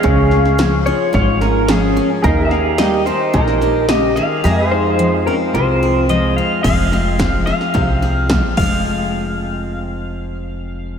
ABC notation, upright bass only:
X:1
M:4/4
L:1/8
Q:1/4=109
K:Fm
V:1 name="Upright bass" clef=bass
D,,4 A,,,4 | E,,4 B,,,4 | F,,4 C,,4 | F,,,4 C,,3 F,,,- |
F,,,8 |]